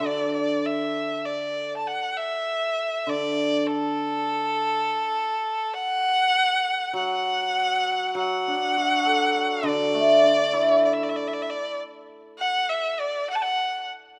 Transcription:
Already playing: F#3
0.00 D3
0.07 D5
0.34 D5
0.66 E5
1.25 D5
1.77 A5
1.87 F#5
2.17 E5
3.07 D3 D5
3.68 A4
5.73 F#5
6.93 F#3 F#5
8.15 F#3 F#5
8.48 D4
8.77 F#4
9.05 A4
9.35 D5
9.63 D3 D5
9.93 A3
10.23 D4
10.53 E4
10.85 D5
10.93 E5
11.03 D5
11.09 E5
11.16 D5
11.27 E5
11.34 D5
11.42 E5
11.50 D5
12.39 F#5
12.70 E5
13.00 D5
13.30 F#5
13.35 A5
13.42 F#5

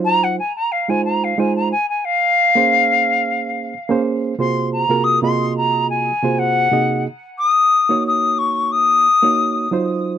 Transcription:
Already playing: F#3 D#4 F4 C5
0.04 A#5
0.23 F#5
0.39 G#5
0.56 A#5
0.71 F5
0.88 G#3 D#4 F4 C5 G#5
1.04 A#5
1.24 F5
1.38 G#3 D#4 F4 C5 G#5
1.56 A#5
1.71 G#5
1.89 G#5
2.04 F5
2.55 A#3 C#4 G#4 C5
3.89 A#3 C#4 G#4 C5
4.39 C3 A#3 F4 F#4 G#4 C5 C6
4.72 A#5
4.89 C3 A#3 F4 F#4 G#4 A#4
5.03 D#6
5.22 C3 A#3 F4 F#4 G#4 D#5 C6
5.57 A#5
5.89 G#5
6.23 C3 A#3 F4 F#4 G#4 C5
6.38 F#5
6.71 C3 A#3 D#4 F#4 G#4 D#5
7.38 D#6
7.89 A#3 D#4 F#4 C#5
8.07 D#6
8.38 C#6
8.71 D#6
9.23 A#3 D#4 F#4 C#5
9.71 F#3 D#4 F4 C5

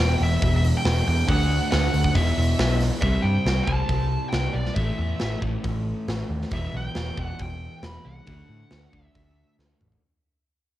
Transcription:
Already playing: E2 B2 E3 G5
0.00 E1
0.20 E1 E5, open hi-hat
0.42 E1, kick, open hi-hat
0.56 E5
0.64 open hi-hat
0.77 G5
0.85 E1, snare, open hi-hat
1.07 E2 G5, open hi-hat
1.27 D2 D3 A3 D4 F#5, kick, open hi-hat
1.50 open hi-hat
1.71 D2 F#5, snare, open hi-hat
1.94 D2, open hi-hat
2.04 kick
2.15 E1 E2 B2 E3 E5, kick, open hi-hat
2.37 E1, open hi-hat
2.59 B1, snare, open hi-hat
2.80 snare, open hi-hat
3.01 C2 C3 G3 C4 E5, kick
3.22 G2 G5
3.46 C2, snare, open hi-hat
3.64 C2 C4 A5, kick
3.69 C3 G3
3.89 C2, kick, open hi-hat
4.29 C2 G5, snare, open hi-hat
4.53 B1 D5
4.65 snare
4.75 A1 A2 E3 A3 E5, kick, open hi-hat
4.99 E2
5.19 A1, snare, open hi-hat
5.42 A1 A2 E3 A3, kick
5.64 A1, kick, open hi-hat
6.08 A1, snare, open hi-hat
6.29 D#2
6.42 snare
6.51 E1 E2 B2 E3 E5, kick, open hi-hat
6.73 B1 G5
6.95 E1, snare, open hi-hat
7.17 E1 E2 B2 E3, kick
7.24 F#5
7.39 E1 G5, kick, open hi-hat
7.83 E1 B5, snare, open hi-hat
8.05 C2 F#5
8.26 D2 D3 A3 D4, kick, open hi-hat
8.49 A2
8.71 D2, snare, open hi-hat
8.92 D2 D3 A3 D4, kick
9.05 E5
9.15 D2, kick, open hi-hat
9.59 D2, snare
9.81 A1, mid tom
9.92 floor tom

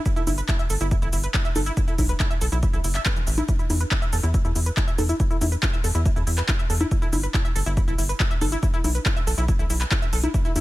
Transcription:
0.06 E4, kick, closed hi-hat, shaker
0.16 E4, closed hi-hat, shaker
0.27 G1 E4, open hi-hat, high conga, shaker
0.38 B4, closed hi-hat, shaker
0.48 E4, kick, clap, closed hi-hat, shaker
0.59 E5, closed hi-hat, shaker
0.70 G1 A4, open hi-hat, shaker
0.81 G1 E4, closed hi-hat, shaker
0.91 E4, kick, closed hi-hat, shaker
1.02 G1 E4, closed hi-hat, shaker
1.13 G1 E4, open hi-hat, shaker
1.23 B4, closed hi-hat, shaker
1.34 E4, kick, clap, closed hi-hat, shaker
1.45 E5, closed hi-hat, shaker
1.56 G1 A4, open hi-hat, high conga, shaker
1.66 E4, closed hi-hat, shaker
1.77 E4, kick, closed hi-hat, shaker
1.88 E4, closed hi-hat, shaker
1.98 B1 E4, kick, open hi-hat, high conga, shaker
2.09 B4, closed hi-hat, shaker
2.20 E4, kick, clap, closed hi-hat, shaker
2.31 E5, closed hi-hat, shaker
2.41 B1 A4, open hi-hat, shaker
2.52 B1 E4, closed hi-hat, shaker
2.63 E4, kick, closed hi-hat, shaker
2.73 B1 E4, closed hi-hat, shaker
2.84 F#1 E4, open hi-hat, shaker
2.95 E5, clap, closed hi-hat, shaker
3.06 B4, kick, clap, closed hi-hat, shaker
3.16 E3, closed hi-hat, shaker
3.27 A1 E3, open hi-hat, shaker
3.38 E4, closed hi-hat, high conga, shaker
3.48 E4, kick, closed hi-hat, shaker
3.59 E4, closed hi-hat, shaker
3.70 E2 E4, open hi-hat, high conga, shaker
3.80 B4, closed hi-hat, shaker
3.91 E4, kick, clap, closed hi-hat, shaker
4.02 E5, closed hi-hat, shaker
4.13 E2 A4, open hi-hat, shaker
4.23 E2 E4, closed hi-hat, shaker
4.34 E4, kick, closed hi-hat, shaker
4.45 E2 E4, closed hi-hat, shaker
4.55 E2 E4, open hi-hat, shaker
4.66 B4, closed hi-hat, shaker
4.77 E4, kick, clap, closed hi-hat, shaker
4.88 E5, closed hi-hat, shaker
4.98 E2 A4, open hi-hat, high conga, shaker
5.09 E4, closed hi-hat, shaker
5.20 E4, kick, closed hi-hat, shaker
5.31 E4, closed hi-hat, shaker
5.41 E2 E4, open hi-hat, high conga, shaker
5.52 B4, closed hi-hat, shaker
5.63 E4, kick, clap, closed hi-hat, shaker
5.73 E5, closed hi-hat, shaker
5.84 E2 A4, open hi-hat, shaker
5.95 E2 E4, closed hi-hat, shaker
6.05 E4, kick, closed hi-hat, shaker
6.16 E2 E4, closed hi-hat, shaker
6.27 E2 E4, open hi-hat, shaker
6.38 B4, clap, closed hi-hat, shaker
6.48 E4, kick, clap, closed hi-hat, shaker
6.59 E5, closed hi-hat, shaker
6.70 E2 A4, open hi-hat, shaker
6.80 E4, high conga, shaker
6.91 E4, kick, closed hi-hat, shaker
7.02 E4, closed hi-hat, shaker
7.13 G1 E4, open hi-hat, high conga, shaker
7.23 B4, closed hi-hat, shaker
7.34 E4, kick, clap, closed hi-hat, shaker
7.45 E5, closed hi-hat, shaker
7.55 G1 A4, open hi-hat, shaker
7.66 G1 E4, closed hi-hat, shaker
7.77 E4, kick, closed hi-hat, shaker
7.88 G1 E4, closed hi-hat, shaker
7.98 G1 E4, open hi-hat, shaker
8.09 B4, closed hi-hat, shaker
8.20 E4, kick, clap, closed hi-hat, shaker
8.31 E5, closed hi-hat, shaker
8.41 G1 A4, open hi-hat, high conga, shaker
8.52 E4, closed hi-hat, shaker
8.63 E4, kick, closed hi-hat, shaker
8.74 E4, closed hi-hat, shaker
8.84 B1 E4, open hi-hat, high conga, shaker
8.95 B4, closed hi-hat, shaker
9.06 E4, kick, clap, closed hi-hat, shaker
9.16 E5, closed hi-hat, shaker
9.27 B1 A4, open hi-hat, shaker
9.38 B1 E4, closed hi-hat, shaker
9.48 E4, kick, closed hi-hat, shaker
9.59 B1 E4, closed hi-hat, shaker
9.70 B1 E4, open hi-hat, shaker
9.81 B4, clap, closed hi-hat, shaker
9.91 E4, kick, clap, closed hi-hat, shaker
10.02 E5, closed hi-hat, shaker
10.13 B1 A4, open hi-hat, shaker
10.23 E4, closed hi-hat, high conga, shaker
10.34 E4, kick, closed hi-hat, shaker
10.45 E4, closed hi-hat, shaker
10.56 E2 E4, open hi-hat, high conga, shaker

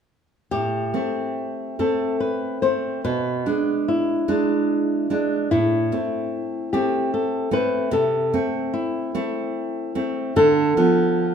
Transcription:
0.51 A2 G4
0.94 A3 C4
1.79 A3 C4 A4
2.20 B4
2.62 A3 C4 C5
3.04 B2 B4
3.46 G#3 D4
3.88 E4
4.28 G#3 D4
5.10 G#3 D4
5.51 A2 E4
5.92 A3 C4
6.73 A3 C4 G4
7.14 A4
7.51 A3 C4 B4
7.91 C3 A4
8.33 A3 C4
8.74 E4
9.15 A3 C4
9.95 A3 C4
10.36 D3 A4
10.77 F3 B3

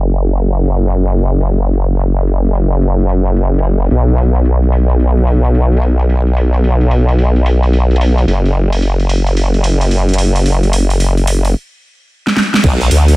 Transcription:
Already playing: F#1
0.10 open hi-hat
0.27 open hi-hat
0.37 open hi-hat
0.54 open hi-hat
0.64 open hi-hat
0.81 open hi-hat
0.91 open hi-hat
1.09 open hi-hat
1.18 open hi-hat
1.36 open hi-hat
1.41 closed hi-hat
1.46 open hi-hat
1.63 open hi-hat
1.73 open hi-hat
1.96 open hi-hat
2.01 open hi-hat
2.18 open hi-hat
2.28 open hi-hat
2.45 open hi-hat
2.55 open hi-hat
2.72 open hi-hat
2.82 open hi-hat
3.00 open hi-hat
3.06 open hi-hat
3.09 open hi-hat
3.26 open hi-hat
3.37 open hi-hat
3.54 open hi-hat
3.59 closed hi-hat
3.64 open hi-hat
3.86 open hi-hat
3.91 B1, open hi-hat
4.08 open hi-hat
4.18 open hi-hat
4.35 open hi-hat
4.45 open hi-hat
4.63 open hi-hat
4.73 open hi-hat
4.90 open hi-hat
5.00 open hi-hat
5.17 open hi-hat
5.27 open hi-hat
5.45 open hi-hat
5.55 open hi-hat
5.72 open hi-hat
5.77 closed hi-hat
5.82 open hi-hat
6.00 open hi-hat
6.10 open hi-hat
6.27 open hi-hat
6.37 open hi-hat
6.54 open hi-hat
6.64 open hi-hat
6.81 open hi-hat
6.91 open hi-hat
7.09 open hi-hat
7.19 open hi-hat
7.36 open hi-hat
7.46 open hi-hat
7.63 open hi-hat
7.73 open hi-hat
7.91 open hi-hat
7.96 closed hi-hat
8.01 open hi-hat
8.18 open hi-hat
8.27 F#1, open hi-hat
8.46 open hi-hat
8.73 open hi-hat
8.82 open hi-hat
9.00 open hi-hat
9.09 open hi-hat
9.27 open hi-hat
9.37 open hi-hat
9.54 open hi-hat
9.64 open hi-hat
9.81 open hi-hat
9.91 open hi-hat
10.09 open hi-hat
10.14 closed hi-hat
10.18 open hi-hat
10.36 open hi-hat
10.46 open hi-hat
10.63 open hi-hat
10.73 open hi-hat
10.90 open hi-hat
11.00 open hi-hat
11.17 open hi-hat
11.27 open hi-hat
11.45 open hi-hat
12.27 snare
12.37 snare
12.54 snare
12.64 B1, kick, open hi-hat, crash
12.81 open hi-hat
12.91 D2, open hi-hat
13.08 open hi-hat

